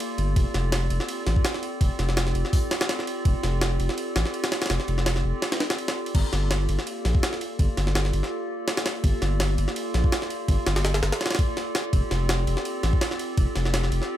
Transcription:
Already playing: A#3 F4 G4 A4 D5
0.00 ride
0.18 G1, ride
0.36 F1 C4 F4 G4 A4 D5, kick, ride
0.54 F1, snare, ride
0.72 snare, ride
0.90 F1 C4 F4 G4 A4 D5, ride
1.00 snare
1.09 ride
1.27 A1, snare, ride
1.36 kick
1.45 snare, ride
1.54 snare
1.63 ride
1.81 F1 C4 F4 G4 A4 D5, kick, ride
1.99 F1, snare, ride
2.09 snare
2.17 snare, ride
2.27 snare
2.35 F1 C4 F4 G4 A4 D5, ride
2.45 snare
2.53 kick, open hi-hat
2.71 C4 F4 G4 A4 D5, snare, ride
2.81 snare
2.89 snare, ride
2.99 snare
3.07 ride
3.25 F1 C4 F4 G4 A4 D5, kick, ride
3.43 F1, snare, ride
3.61 snare, ride
3.80 F1 C4 F4 G4 A4 D5, ride
3.89 snare
3.98 ride
4.16 A1, snare, ride
4.26 snare
4.34 ride
4.44 snare, ride
4.52 snare, ride
4.62 snare, ride
4.66 snare, ride
4.70 F1 C4 F4 G4 A4 D5, snare, ride
4.80 snare
4.88 F1, ride
4.98 snare
5.06 snare, ride
5.16 snare
5.24 F1 C4 F4 G4 A4 D5
5.42 snare, ride
5.52 snare, ride
5.60 C4 F4 G4 A4 D5, snare, ride
5.70 snare, ride
5.78 ride
5.88 snare, ride
6.06 ride
6.14 G1 A#3 F4 G4 A4 D5, kick, crash, ride
6.33 G1, snare, ride
6.51 snare, ride
6.68 G1 A#3 F4 G4 A4 D5, ride
6.79 snare
6.87 ride
7.05 A#1, snare, ride
7.15 kick
7.23 snare, ride
7.33 snare
7.41 ride
7.59 G1 A#3 F4 G4 A4 D5, kick, ride
7.77 G1, snare, ride
7.87 snare
7.95 snare, ride
8.05 snare
8.13 G1 A#3 F4 G4 A4 D5, ride
8.23 snare
8.49 A#3 F4 G4 A4 D5
8.68 snare, ride
8.77 snare, ride
8.86 snare, ride
9.03 G1 A#3 F4 G4 A4 D5, kick, ride
9.22 G1, snare, ride
9.40 snare, ride
9.58 G1 A#3 F4 G4 A4 D5, ride
9.68 snare
9.76 ride
9.94 A#1, snare, ride
10.04 kick
10.12 snare, ride
10.22 snare
10.30 ride
10.48 G1 A#3 F4 G4 A4 D5, kick, ride
10.66 G1, snare, ride
10.76 snare, ride
10.85 snare, ride
10.94 snare, ride
11.03 G1 A#3 F4 G4 A4 D5, snare, ride
11.12 snare, ride
11.21 snare, ride
11.26 snare, ride
11.31 snare, ride
11.35 snare, ride
11.39 A#3 F4 G4 A4 D5, kick, ride
11.57 snare, ride
11.75 A#3 F4 G4 A4 D5, snare, ride
11.93 F1 C4 F4 G4 A4 D5, kick, ride
12.11 F1, snare, ride
12.29 snare, ride
12.47 F1 C4 F4 G4 A4 D5, ride
12.57 snare
12.65 ride
12.83 A1, snare, ride
12.93 kick
13.01 snare, ride
13.11 snare
13.19 ride
13.37 F1 C4 F4 G4 A4 D5, kick, ride
13.56 F1, snare, ride
13.65 snare
13.74 snare, ride
13.84 snare
13.92 F1 C4 F4 G4 A4 D5, ride
14.02 snare

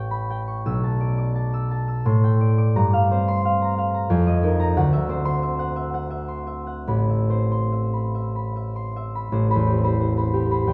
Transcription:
Already playing: A1 B4 G5 A5 C#6 E6
0.11 B5
0.30 G5
0.48 C#6
0.66 B1 E6
0.84 A5
1.01 D5
1.18 D6
1.35 A5
1.54 E6
1.71 A5
1.88 E6
2.05 A2 C6
2.24 G5
2.41 D5
2.58 D6
2.76 G2 A#5
2.93 F5
3.11 C4 C5
3.28 C6
3.45 F5
3.62 A#5
3.78 F5
3.94 A#5
4.10 F2 G#5
4.27 D#5
4.43 D#4 A#4
4.60 A#5
4.77 D2 F#5
4.93 E5
5.09 C4 C5
5.25 C6
5.42 E5
5.59 F#5
5.76 E5
5.94 F#5
6.10 E5
6.28 C6
6.47 E5
6.67 F#5
6.87 A1 B5
7.09 E5
7.30 C4 C5
7.52 C6
7.72 E5
7.93 B5
8.15 E5
8.36 B5
8.56 E5
8.76 C6
8.96 E5
9.15 B5
9.32 A1 C5
9.50 C5 B5
9.55 E2
9.67 G4
9.78 C4
9.84 C5 B5
10.00 C5
10.17 C5 B5
10.34 G4
10.45 C4
10.51 C5 B5
10.67 E2 G5

